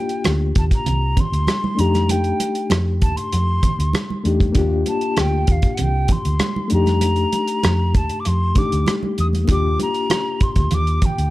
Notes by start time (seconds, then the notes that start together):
Already playing: A#3 D4 F4 G4 G5
0.09 closed hi-hat
0.24 D2, cross-stick, closed hi-hat, high conga
0.55 D#2 A5, kick, closed hi-hat
0.71 A#5, kick, closed hi-hat
0.86 C2, closed hi-hat, muted conga, low conga
1.17 C6, kick, closed hi-hat, low conga
1.32 D2, closed hi-hat
1.47 cross-stick, closed hi-hat, high conga
1.64 high conga
1.75 F2 A3 D4, closed hi-hat
1.79 D#4 G4 A#5
1.94 cross-stick, closed hi-hat, high conga
2.09 G5, closed hi-hat, muted conga
2.24 closed hi-hat
2.40 closed hi-hat, muted conga
2.55 closed hi-hat
2.70 F2, cross-stick, closed hi-hat, high conga
3.02 D#2 A5, kick, closed hi-hat
3.17 C6, closed hi-hat
3.32 F2, closed hi-hat, muted conga
3.63 kick, closed hi-hat, low conga
3.79 D2, closed hi-hat
3.93 cross-stick, closed hi-hat, high conga
4.10 high conga
4.24 E2 A3 D4 D#4 G4, closed hi-hat
4.40 kick, closed hi-hat, high conga
4.52 D#2 A#3 D4 F4, kick, closed hi-hat, muted conga
4.58 G4
4.86 A5, closed hi-hat, muted conga
5.01 closed hi-hat
5.17 D2 G5, cross-stick, closed hi-hat, high conga
5.47 D#2, kick, closed hi-hat
5.52 F5
5.62 kick, closed hi-hat
5.75 F#5, closed hi-hat
5.79 C2 G5, muted conga, low conga
6.08 C6, kick, closed hi-hat, low conga
6.25 D2, closed hi-hat
6.39 cross-stick, closed hi-hat, high conga
6.56 high conga
6.68 F2 A3 D4, closed hi-hat
6.72 D#4 G4 A#5
6.86 cross-stick, closed hi-hat, high conga
7.01 closed hi-hat, muted conga
7.16 closed hi-hat
7.32 closed hi-hat, muted conga
7.48 closed hi-hat
7.63 F2, cross-stick, closed hi-hat, high conga
7.95 D#2 A5, kick, closed hi-hat
8.09 closed hi-hat
8.20 D6
8.25 F2 C6, closed hi-hat
8.55 A3 D4 D#4 G4 D6, kick, closed hi-hat, low conga
8.72 D2, closed hi-hat
8.86 cross-stick, closed hi-hat, high conga
9.03 high conga
9.18 E2 D#6, closed hi-hat
9.33 closed hi-hat, high conga
9.45 A#3 D4, kick, closed hi-hat, muted conga
9.49 D#2 F4 G4 D6
9.79 A#5, closed hi-hat, muted conga
9.94 closed hi-hat
10.10 cross-stick, closed hi-hat, high conga
10.41 C6, muted fingered electric bass stroke, kick, closed hi-hat
10.56 D2, kick, closed hi-hat
10.71 D#2 D6, closed hi-hat, low conga
10.87 closed hi-hat
11.02 G5, kick, closed hi-hat, low conga
11.18 D2, closed hi-hat